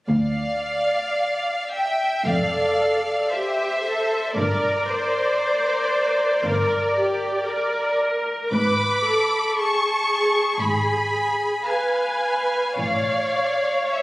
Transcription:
0.08 double bass section D2, cello section D2, violin section D5 F5
1.73 violin section E5 G5
2.25 double bass section F1, cello section F2, viola section A4, violin section D5 F5
3.31 viola section G4, violin section C5 E5
3.84 viola section A4
4.35 double bass section G1, cello section G2, viola section A#4, violin section A#4 D5
4.88 viola section C5
6.44 double bass section G1, cello section G2, viola section A#4
6.97 viola section G4
7.48 viola section A#4
8.52 double bass section G#1, cello section G#2, viola section B4, violin section B5 D6
9.04 viola section A4
9.56 viola section G#4, violin section A5 C#6
10.59 double bass section G#1, cello section G#2, violin section G#5 B5
11.66 viola section B4, violin section F5 G#5
12.77 double bass section A1, cello section A2, viola section C#5, violin section D5 F5
13.91 violin section C#5 E5

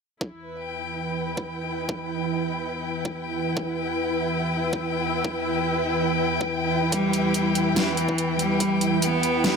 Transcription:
0.21 analog synth pad E3 E4 B4 G5 B5, string section E4, kick
0.46 string section B4
0.59 string section G5
1.37 kick
1.89 kick
3.05 kick
3.57 analog synth pad E6, kick
4.73 kick
5.24 kick
6.41 kick
6.92 cello G3, analog synth pad B5, kick, closed hi-hat
7.13 closed hi-hat
7.34 closed hi-hat
7.55 closed hi-hat
7.76 cello E3, snare, closed hi-hat
7.97 closed hi-hat
8.09 kick
8.18 closed hi-hat
8.39 cello G3, closed hi-hat
8.60 kick, closed hi-hat
8.81 closed hi-hat
9.02 cello B3, closed hi-hat
9.23 closed hi-hat
9.44 snare, closed hi-hat

